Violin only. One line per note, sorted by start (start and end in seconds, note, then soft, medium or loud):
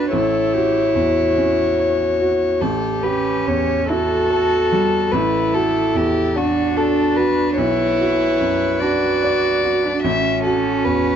0.00 0.12 B4 medium
0.13 2.62 C#5 medium
2.61 3.05 A4 medium
3.03 3.48 B4 medium
3.47 3.89 C#5 medium
3.90 5.13 A4 medium
5.12 5.56 B4 medium
5.54 5.98 A4 medium
5.96 6.39 G4 medium
6.37 6.78 F#4 medium
6.77 7.18 A4 medium
7.17 7.56 B4 medium
7.57 8.81 C#5 medium
8.80 10.02 D5 medium
10.03 10.43 E5 medium
10.44 10.86 A4 medium
10.85 11.16 B4 medium